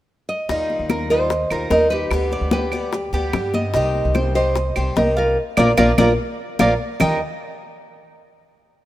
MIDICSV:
0, 0, Header, 1, 7, 480
1, 0, Start_track
1, 0, Key_signature, -3, "major"
1, 0, Tempo, 407332
1, 580, Time_signature, 4, 2, 24, 8
1, 10429, End_track
2, 0, Start_track
2, 0, Title_t, "Cuban tres"
2, 0, Program_c, 0, 25
2, 579, Note_on_c, 0, 63, 65
2, 1043, Note_off_c, 0, 63, 0
2, 1066, Note_on_c, 0, 70, 66
2, 1294, Note_off_c, 0, 70, 0
2, 1309, Note_on_c, 0, 75, 66
2, 1767, Note_off_c, 0, 75, 0
2, 1784, Note_on_c, 0, 70, 70
2, 2012, Note_off_c, 0, 70, 0
2, 2025, Note_on_c, 0, 63, 73
2, 2252, Note_off_c, 0, 63, 0
2, 2263, Note_on_c, 0, 67, 65
2, 2723, Note_off_c, 0, 67, 0
2, 2740, Note_on_c, 0, 74, 65
2, 2969, Note_off_c, 0, 74, 0
2, 2979, Note_on_c, 0, 67, 65
2, 3208, Note_off_c, 0, 67, 0
2, 3215, Note_on_c, 0, 74, 63
2, 3679, Note_off_c, 0, 74, 0
2, 3697, Note_on_c, 0, 67, 73
2, 4160, Note_off_c, 0, 67, 0
2, 4175, Note_on_c, 0, 75, 70
2, 4406, Note_off_c, 0, 75, 0
2, 4411, Note_on_c, 0, 63, 69
2, 4877, Note_off_c, 0, 63, 0
2, 4885, Note_on_c, 0, 72, 68
2, 5121, Note_off_c, 0, 72, 0
2, 5129, Note_on_c, 0, 75, 65
2, 5597, Note_off_c, 0, 75, 0
2, 5609, Note_on_c, 0, 72, 67
2, 5845, Note_off_c, 0, 72, 0
2, 5851, Note_on_c, 0, 63, 69
2, 6083, Note_off_c, 0, 63, 0
2, 6088, Note_on_c, 0, 65, 66
2, 6325, Note_off_c, 0, 65, 0
2, 6567, Note_on_c, 0, 74, 93
2, 6572, Note_on_c, 0, 70, 83
2, 6579, Note_on_c, 0, 65, 81
2, 6726, Note_off_c, 0, 70, 0
2, 6727, Note_off_c, 0, 74, 0
2, 6728, Note_off_c, 0, 65, 0
2, 6805, Note_on_c, 0, 65, 98
2, 6808, Note_on_c, 0, 70, 84
2, 6816, Note_on_c, 0, 74, 75
2, 6965, Note_off_c, 0, 70, 0
2, 6966, Note_off_c, 0, 65, 0
2, 6966, Note_off_c, 0, 74, 0
2, 7051, Note_on_c, 0, 74, 90
2, 7054, Note_on_c, 0, 70, 78
2, 7061, Note_on_c, 0, 65, 70
2, 7208, Note_off_c, 0, 70, 0
2, 7209, Note_off_c, 0, 65, 0
2, 7209, Note_off_c, 0, 74, 0
2, 7772, Note_on_c, 0, 65, 89
2, 7777, Note_on_c, 0, 70, 87
2, 7783, Note_on_c, 0, 74, 75
2, 7930, Note_off_c, 0, 70, 0
2, 7931, Note_off_c, 0, 65, 0
2, 7932, Note_off_c, 0, 74, 0
2, 8246, Note_on_c, 0, 63, 74
2, 8256, Note_on_c, 0, 70, 73
2, 8261, Note_on_c, 0, 75, 86
2, 8477, Note_off_c, 0, 63, 0
2, 8482, Note_off_c, 0, 70, 0
2, 8485, Note_off_c, 0, 75, 0
2, 10429, End_track
3, 0, Start_track
3, 0, Title_t, "Nylon-string guitar"
3, 0, Program_c, 1, 24
3, 339, Note_on_c, 1, 75, 98
3, 1010, Note_off_c, 1, 75, 0
3, 1299, Note_on_c, 1, 72, 91
3, 2002, Note_off_c, 1, 72, 0
3, 2007, Note_on_c, 1, 70, 84
3, 2238, Note_off_c, 1, 70, 0
3, 2243, Note_on_c, 1, 71, 93
3, 2959, Note_off_c, 1, 71, 0
3, 2973, Note_on_c, 1, 71, 83
3, 3419, Note_off_c, 1, 71, 0
3, 3458, Note_on_c, 1, 67, 82
3, 4175, Note_on_c, 1, 75, 90
3, 4196, Note_off_c, 1, 67, 0
3, 4847, Note_off_c, 1, 75, 0
3, 5130, Note_on_c, 1, 72, 89
3, 5864, Note_on_c, 1, 70, 83
3, 5874, Note_off_c, 1, 72, 0
3, 6092, Note_off_c, 1, 70, 0
3, 6106, Note_on_c, 1, 70, 83
3, 6325, Note_off_c, 1, 70, 0
3, 6585, Note_on_c, 1, 70, 88
3, 6591, Note_on_c, 1, 74, 92
3, 6594, Note_on_c, 1, 65, 86
3, 6737, Note_off_c, 1, 70, 0
3, 6737, Note_off_c, 1, 74, 0
3, 6740, Note_off_c, 1, 65, 0
3, 6821, Note_on_c, 1, 65, 83
3, 6824, Note_on_c, 1, 74, 89
3, 6826, Note_on_c, 1, 70, 86
3, 6973, Note_off_c, 1, 74, 0
3, 6974, Note_off_c, 1, 65, 0
3, 6976, Note_off_c, 1, 70, 0
3, 7063, Note_on_c, 1, 65, 89
3, 7070, Note_on_c, 1, 70, 90
3, 7076, Note_on_c, 1, 74, 83
3, 7216, Note_off_c, 1, 65, 0
3, 7217, Note_off_c, 1, 70, 0
3, 7219, Note_off_c, 1, 74, 0
3, 7780, Note_on_c, 1, 65, 85
3, 7780, Note_on_c, 1, 70, 88
3, 7787, Note_on_c, 1, 74, 89
3, 7933, Note_off_c, 1, 70, 0
3, 7935, Note_off_c, 1, 65, 0
3, 7938, Note_off_c, 1, 74, 0
3, 8264, Note_on_c, 1, 79, 75
3, 8486, Note_off_c, 1, 79, 0
3, 10429, End_track
4, 0, Start_track
4, 0, Title_t, "Steel-string acoustic guitar"
4, 0, Program_c, 2, 25
4, 577, Note_on_c, 2, 51, 62
4, 587, Note_on_c, 2, 55, 70
4, 599, Note_on_c, 2, 63, 75
4, 606, Note_on_c, 2, 65, 74
4, 1283, Note_off_c, 2, 65, 0
4, 1286, Note_off_c, 2, 51, 0
4, 1297, Note_off_c, 2, 63, 0
4, 1297, Note_on_c, 2, 65, 64
4, 1311, Note_on_c, 2, 63, 57
4, 1319, Note_off_c, 2, 55, 0
4, 1323, Note_on_c, 2, 55, 49
4, 1526, Note_off_c, 2, 65, 0
4, 1533, Note_off_c, 2, 63, 0
4, 1535, Note_off_c, 2, 55, 0
4, 1772, Note_on_c, 2, 65, 61
4, 1788, Note_on_c, 2, 63, 61
4, 1800, Note_on_c, 2, 55, 55
4, 2003, Note_off_c, 2, 65, 0
4, 2010, Note_off_c, 2, 55, 0
4, 2011, Note_off_c, 2, 63, 0
4, 2016, Note_on_c, 2, 51, 48
4, 2024, Note_on_c, 2, 55, 51
4, 2032, Note_on_c, 2, 63, 53
4, 2044, Note_on_c, 2, 65, 53
4, 2484, Note_off_c, 2, 51, 0
4, 2489, Note_off_c, 2, 55, 0
4, 2490, Note_on_c, 2, 50, 62
4, 2492, Note_off_c, 2, 63, 0
4, 2498, Note_off_c, 2, 65, 0
4, 2503, Note_on_c, 2, 55, 75
4, 2511, Note_on_c, 2, 59, 79
4, 2517, Note_on_c, 2, 67, 79
4, 3200, Note_off_c, 2, 67, 0
4, 3201, Note_off_c, 2, 50, 0
4, 3205, Note_on_c, 2, 67, 67
4, 3211, Note_off_c, 2, 59, 0
4, 3224, Note_on_c, 2, 59, 54
4, 3231, Note_off_c, 2, 55, 0
4, 3236, Note_on_c, 2, 55, 53
4, 3438, Note_off_c, 2, 67, 0
4, 3446, Note_off_c, 2, 55, 0
4, 3448, Note_off_c, 2, 59, 0
4, 3684, Note_on_c, 2, 67, 65
4, 3700, Note_on_c, 2, 59, 59
4, 3712, Note_on_c, 2, 55, 49
4, 3918, Note_off_c, 2, 67, 0
4, 3920, Note_off_c, 2, 55, 0
4, 3926, Note_off_c, 2, 59, 0
4, 3927, Note_on_c, 2, 50, 49
4, 3934, Note_on_c, 2, 55, 53
4, 3947, Note_on_c, 2, 59, 53
4, 3955, Note_on_c, 2, 67, 52
4, 4400, Note_off_c, 2, 50, 0
4, 4403, Note_off_c, 2, 55, 0
4, 4406, Note_on_c, 2, 48, 68
4, 4410, Note_off_c, 2, 59, 0
4, 4414, Note_off_c, 2, 67, 0
4, 4415, Note_on_c, 2, 51, 70
4, 4424, Note_on_c, 2, 55, 74
4, 4427, Note_on_c, 2, 60, 77
4, 4435, Note_on_c, 2, 67, 86
4, 5113, Note_off_c, 2, 67, 0
4, 5120, Note_off_c, 2, 48, 0
4, 5123, Note_off_c, 2, 60, 0
4, 5125, Note_off_c, 2, 51, 0
4, 5127, Note_on_c, 2, 67, 64
4, 5129, Note_off_c, 2, 55, 0
4, 5137, Note_on_c, 2, 60, 62
4, 5148, Note_on_c, 2, 55, 57
4, 5152, Note_on_c, 2, 51, 50
4, 5361, Note_off_c, 2, 67, 0
4, 5364, Note_off_c, 2, 51, 0
4, 5365, Note_off_c, 2, 60, 0
4, 5368, Note_off_c, 2, 55, 0
4, 5608, Note_on_c, 2, 67, 58
4, 5615, Note_on_c, 2, 60, 64
4, 5624, Note_on_c, 2, 55, 55
4, 5633, Note_on_c, 2, 51, 49
4, 5827, Note_off_c, 2, 51, 0
4, 5839, Note_off_c, 2, 55, 0
4, 5841, Note_off_c, 2, 67, 0
4, 5841, Note_on_c, 2, 51, 46
4, 5845, Note_off_c, 2, 60, 0
4, 5853, Note_on_c, 2, 55, 53
4, 5861, Note_on_c, 2, 60, 48
4, 5874, Note_on_c, 2, 67, 55
4, 6319, Note_off_c, 2, 51, 0
4, 6325, Note_off_c, 2, 55, 0
4, 6329, Note_off_c, 2, 60, 0
4, 6335, Note_off_c, 2, 67, 0
4, 6565, Note_on_c, 2, 62, 87
4, 6566, Note_on_c, 2, 58, 82
4, 6574, Note_on_c, 2, 53, 77
4, 6723, Note_off_c, 2, 58, 0
4, 6725, Note_off_c, 2, 53, 0
4, 6725, Note_off_c, 2, 62, 0
4, 6802, Note_on_c, 2, 58, 81
4, 6809, Note_on_c, 2, 53, 86
4, 6809, Note_on_c, 2, 62, 77
4, 6963, Note_off_c, 2, 58, 0
4, 6964, Note_off_c, 2, 62, 0
4, 6966, Note_off_c, 2, 53, 0
4, 7044, Note_on_c, 2, 62, 78
4, 7048, Note_on_c, 2, 58, 79
4, 7051, Note_on_c, 2, 53, 71
4, 7203, Note_off_c, 2, 53, 0
4, 7205, Note_off_c, 2, 58, 0
4, 7206, Note_off_c, 2, 62, 0
4, 7767, Note_on_c, 2, 53, 89
4, 7771, Note_on_c, 2, 58, 74
4, 7778, Note_on_c, 2, 62, 78
4, 7927, Note_off_c, 2, 58, 0
4, 7928, Note_off_c, 2, 53, 0
4, 7928, Note_off_c, 2, 62, 0
4, 8254, Note_on_c, 2, 51, 65
4, 8267, Note_on_c, 2, 55, 78
4, 8273, Note_on_c, 2, 63, 67
4, 8283, Note_on_c, 2, 65, 71
4, 8450, Note_off_c, 2, 51, 0
4, 8457, Note_off_c, 2, 55, 0
4, 8459, Note_off_c, 2, 63, 0
4, 8464, Note_off_c, 2, 65, 0
4, 10429, End_track
5, 0, Start_track
5, 0, Title_t, "Upright bass"
5, 0, Program_c, 3, 32
5, 576, Note_on_c, 3, 39, 81
5, 918, Note_off_c, 3, 39, 0
5, 932, Note_on_c, 3, 39, 80
5, 1730, Note_off_c, 3, 39, 0
5, 1776, Note_on_c, 3, 39, 80
5, 2003, Note_off_c, 3, 39, 0
5, 2008, Note_on_c, 3, 39, 83
5, 2466, Note_off_c, 3, 39, 0
5, 2485, Note_on_c, 3, 38, 82
5, 2830, Note_off_c, 3, 38, 0
5, 2839, Note_on_c, 3, 38, 83
5, 3643, Note_off_c, 3, 38, 0
5, 3685, Note_on_c, 3, 38, 84
5, 3916, Note_off_c, 3, 38, 0
5, 3927, Note_on_c, 3, 43, 87
5, 4385, Note_off_c, 3, 43, 0
5, 4407, Note_on_c, 3, 36, 84
5, 4751, Note_off_c, 3, 36, 0
5, 4771, Note_on_c, 3, 36, 84
5, 5571, Note_off_c, 3, 36, 0
5, 5618, Note_on_c, 3, 36, 79
5, 5837, Note_off_c, 3, 36, 0
5, 5844, Note_on_c, 3, 36, 82
5, 6306, Note_off_c, 3, 36, 0
5, 6569, Note_on_c, 3, 34, 94
5, 6751, Note_off_c, 3, 34, 0
5, 6810, Note_on_c, 3, 34, 90
5, 6992, Note_off_c, 3, 34, 0
5, 7048, Note_on_c, 3, 34, 87
5, 7231, Note_off_c, 3, 34, 0
5, 7769, Note_on_c, 3, 34, 86
5, 7953, Note_off_c, 3, 34, 0
5, 8257, Note_on_c, 3, 39, 83
5, 8483, Note_off_c, 3, 39, 0
5, 10429, End_track
6, 0, Start_track
6, 0, Title_t, "Muted steel-string acoustic guitar strokes"
6, 1540, Note_on_c, 9, 29, 56
6, 1658, Note_off_c, 9, 29, 0
6, 3455, Note_on_c, 9, 29, 55
6, 3573, Note_off_c, 9, 29, 0
6, 5375, Note_on_c, 9, 29, 60
6, 5493, Note_off_c, 9, 29, 0
6, 10429, End_track
7, 0, Start_track
7, 0, Title_t, "Drums"
7, 581, Note_on_c, 9, 60, 58
7, 581, Note_on_c, 9, 63, 31
7, 699, Note_off_c, 9, 60, 0
7, 699, Note_off_c, 9, 63, 0
7, 823, Note_on_c, 9, 63, 33
7, 941, Note_off_c, 9, 63, 0
7, 1055, Note_on_c, 9, 63, 54
7, 1057, Note_on_c, 9, 75, 56
7, 1058, Note_on_c, 9, 60, 60
7, 1173, Note_off_c, 9, 63, 0
7, 1175, Note_off_c, 9, 75, 0
7, 1176, Note_off_c, 9, 60, 0
7, 1297, Note_on_c, 9, 63, 31
7, 1415, Note_off_c, 9, 63, 0
7, 1535, Note_on_c, 9, 60, 68
7, 1536, Note_on_c, 9, 63, 32
7, 1652, Note_off_c, 9, 60, 0
7, 1654, Note_off_c, 9, 63, 0
7, 1773, Note_on_c, 9, 75, 64
7, 1776, Note_on_c, 9, 63, 36
7, 1891, Note_off_c, 9, 75, 0
7, 1894, Note_off_c, 9, 63, 0
7, 2010, Note_on_c, 9, 63, 73
7, 2015, Note_on_c, 9, 60, 62
7, 2015, Note_on_c, 9, 61, 75
7, 2128, Note_off_c, 9, 63, 0
7, 2133, Note_off_c, 9, 60, 0
7, 2133, Note_off_c, 9, 61, 0
7, 2482, Note_on_c, 9, 75, 65
7, 2489, Note_on_c, 9, 63, 31
7, 2491, Note_on_c, 9, 60, 61
7, 2599, Note_off_c, 9, 75, 0
7, 2607, Note_off_c, 9, 63, 0
7, 2609, Note_off_c, 9, 60, 0
7, 2728, Note_on_c, 9, 63, 32
7, 2732, Note_on_c, 9, 60, 34
7, 2845, Note_off_c, 9, 63, 0
7, 2850, Note_off_c, 9, 60, 0
7, 2962, Note_on_c, 9, 63, 85
7, 2964, Note_on_c, 9, 60, 60
7, 3080, Note_off_c, 9, 63, 0
7, 3082, Note_off_c, 9, 60, 0
7, 3202, Note_on_c, 9, 75, 61
7, 3206, Note_on_c, 9, 63, 32
7, 3213, Note_on_c, 9, 60, 31
7, 3320, Note_off_c, 9, 75, 0
7, 3324, Note_off_c, 9, 63, 0
7, 3331, Note_off_c, 9, 60, 0
7, 3448, Note_on_c, 9, 60, 66
7, 3450, Note_on_c, 9, 63, 34
7, 3566, Note_off_c, 9, 60, 0
7, 3568, Note_off_c, 9, 63, 0
7, 3698, Note_on_c, 9, 63, 34
7, 3816, Note_off_c, 9, 63, 0
7, 3927, Note_on_c, 9, 63, 31
7, 3928, Note_on_c, 9, 75, 65
7, 3929, Note_on_c, 9, 60, 62
7, 3929, Note_on_c, 9, 61, 80
7, 4045, Note_off_c, 9, 63, 0
7, 4046, Note_off_c, 9, 75, 0
7, 4047, Note_off_c, 9, 60, 0
7, 4047, Note_off_c, 9, 61, 0
7, 4169, Note_on_c, 9, 63, 75
7, 4170, Note_on_c, 9, 60, 34
7, 4286, Note_off_c, 9, 63, 0
7, 4288, Note_off_c, 9, 60, 0
7, 4403, Note_on_c, 9, 60, 62
7, 4414, Note_on_c, 9, 63, 32
7, 4521, Note_off_c, 9, 60, 0
7, 4531, Note_off_c, 9, 63, 0
7, 4651, Note_on_c, 9, 63, 32
7, 4769, Note_off_c, 9, 63, 0
7, 4889, Note_on_c, 9, 75, 61
7, 4894, Note_on_c, 9, 60, 57
7, 4898, Note_on_c, 9, 63, 54
7, 5007, Note_off_c, 9, 75, 0
7, 5011, Note_off_c, 9, 60, 0
7, 5016, Note_off_c, 9, 63, 0
7, 5368, Note_on_c, 9, 60, 65
7, 5382, Note_on_c, 9, 63, 33
7, 5486, Note_off_c, 9, 60, 0
7, 5500, Note_off_c, 9, 63, 0
7, 5606, Note_on_c, 9, 75, 66
7, 5621, Note_on_c, 9, 63, 33
7, 5724, Note_off_c, 9, 75, 0
7, 5738, Note_off_c, 9, 63, 0
7, 5853, Note_on_c, 9, 60, 65
7, 5853, Note_on_c, 9, 61, 77
7, 5859, Note_on_c, 9, 63, 75
7, 5971, Note_off_c, 9, 60, 0
7, 5971, Note_off_c, 9, 61, 0
7, 5977, Note_off_c, 9, 63, 0
7, 6562, Note_on_c, 9, 75, 94
7, 6568, Note_on_c, 9, 61, 90
7, 6572, Note_on_c, 9, 63, 88
7, 6680, Note_off_c, 9, 75, 0
7, 6686, Note_off_c, 9, 61, 0
7, 6690, Note_off_c, 9, 63, 0
7, 6806, Note_on_c, 9, 75, 94
7, 6807, Note_on_c, 9, 61, 98
7, 6809, Note_on_c, 9, 63, 94
7, 6924, Note_off_c, 9, 75, 0
7, 6925, Note_off_c, 9, 61, 0
7, 6927, Note_off_c, 9, 63, 0
7, 7046, Note_on_c, 9, 75, 86
7, 7048, Note_on_c, 9, 63, 93
7, 7050, Note_on_c, 9, 61, 94
7, 7163, Note_off_c, 9, 75, 0
7, 7166, Note_off_c, 9, 63, 0
7, 7168, Note_off_c, 9, 61, 0
7, 7768, Note_on_c, 9, 61, 95
7, 7772, Note_on_c, 9, 63, 86
7, 7776, Note_on_c, 9, 75, 89
7, 7886, Note_off_c, 9, 61, 0
7, 7890, Note_off_c, 9, 63, 0
7, 7893, Note_off_c, 9, 75, 0
7, 8247, Note_on_c, 9, 61, 89
7, 8255, Note_on_c, 9, 64, 86
7, 8255, Note_on_c, 9, 75, 94
7, 8365, Note_off_c, 9, 61, 0
7, 8372, Note_off_c, 9, 75, 0
7, 8373, Note_off_c, 9, 64, 0
7, 10429, End_track
0, 0, End_of_file